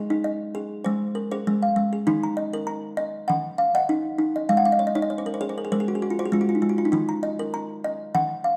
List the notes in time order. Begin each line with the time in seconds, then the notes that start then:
Already playing: G#4 D#5
0.10 D#4
0.24 D#5
0.55 G#4
0.84 G#3 C5
1.15 A#4
1.31 G#4 C5
1.47 G#3
1.62 F5
1.76 G#3
1.93 G#4
2.07 D#3 D#4
2.23 A#5
2.37 D#5
2.53 A#4
2.67 A#5
2.97 D#5
3.28 D#3 F#5
3.58 F5
3.75 D#5 F#5
3.89 D#4
4.19 D#4
4.36 D#5
4.49 G#3 F5
4.57 F#5
4.65 F5
4.72 D#5
4.79 C#5
4.87 D#5
4.95 D#4 C#5
5.02 D#5
5.10 C#5
5.18 C5
5.26 A#4
5.34 C5
5.41 G#4 C#5
5.49 C5
5.58 A#4
5.65 G#4
5.72 G#3 A#4 C5
5.80 G#4
5.88 F#4
5.95 G#4
6.02 F#4
6.10 F4
6.19 F#4 C5
6.25 G#4
6.32 G#3 F4
6.41 F#4
6.49 F4
6.55 D#4
6.62 G#3 F4
6.69 F#4
6.78 F4
6.85 D#4
6.92 D#3 D#4
7.09 A#5
7.23 D#5
7.39 A#4
7.54 A#5
7.84 D#5
8.15 D#3 F#5
8.44 F5